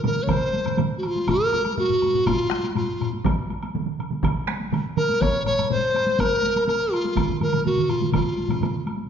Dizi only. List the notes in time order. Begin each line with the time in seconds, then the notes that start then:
0.06 A#4
0.23 C#5
0.30 C5
0.98 F#4
1.07 F4
1.30 A#4
1.79 F#4
2.26 F4
2.76 F4
4.97 A#4
5.21 C#5
5.46 C#5
5.71 C5
6.20 A#4
6.68 A#4
6.93 F4
7.42 A#4
7.66 F#4
7.90 F4
8.14 F4